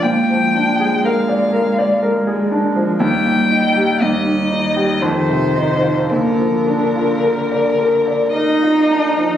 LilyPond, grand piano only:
\new Staff \with { instrumentName = "Grand piano" } { \time 3/4 \key bes \major \tempo 4 = 58 bes,16 f16 d'16 aes'16 bes'16 d''16 bes'16 d''16 bes'16 aes'16 d'16 f16 | ees,16 bes,16 ees'16 g'16 ees,16 ees16 ees'16 g'16 f,16 c16 ees'16 f'16 | bes,16 f16 d'16 f'16 bes'16 d''16 bes'16 d''16 bes'16 f'16 d'16 f16 | }